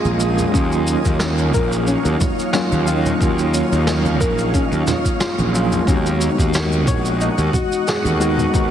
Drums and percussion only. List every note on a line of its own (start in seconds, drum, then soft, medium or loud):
0.05 high conga medium
0.05 shaker soft
0.20 shaker medium
0.38 low conga medium
0.38 shaker medium
0.54 kick loud
0.54 shaker medium
0.72 shaker soft
0.87 shaker medium
1.05 kick medium
1.05 shaker soft
1.19 snare loud
1.19 shaker medium
1.38 shaker soft
1.54 kick loud
1.54 low conga medium
1.54 shaker medium
1.72 shaker soft
1.87 shaker medium
2.05 shaker soft
2.21 kick loud
2.21 high conga medium
2.21 low conga medium
2.21 shaker medium
2.39 shaker soft
2.53 snare medium
2.53 shaker medium
2.72 high conga medium
2.72 shaker soft
2.87 shaker medium
3.06 low conga medium
3.06 shaker soft
3.21 kick loud
3.21 shaker medium
3.39 shaker soft
3.54 shaker medium
3.72 shaker soft
3.87 snare loud
3.87 shaker medium
4.05 high conga medium
4.05 shaker soft
4.20 kick loud
4.20 low conga medium
4.20 shaker medium
4.38 shaker soft
4.54 kick loud
4.54 shaker medium
4.72 shaker soft
4.87 snare soft
4.87 high conga medium
4.87 low conga loud
4.87 shaker medium
5.05 kick medium
5.05 shaker soft
5.20 snare loud
5.20 shaker medium
5.39 high conga medium
5.39 shaker soft
5.55 shaker medium
5.72 low conga medium
5.72 shaker soft
5.87 kick loud
5.87 shaker medium
6.06 shaker soft
6.21 shaker medium
6.38 kick medium
6.38 shaker soft
6.54 snare loud
6.54 shaker medium
6.72 shaker soft
6.87 kick loud
6.87 low conga medium
6.87 shaker medium
7.05 shaker medium
7.21 shaker medium
7.38 shaker soft
7.53 kick loud
7.53 high conga medium
7.53 low conga loud
7.53 shaker medium
7.72 shaker soft
7.88 snare loud
7.88 shaker medium
8.05 high conga medium
8.05 shaker soft
8.21 shaker medium
8.38 low conga medium
8.38 shaker soft
8.54 kick loud
8.54 shaker medium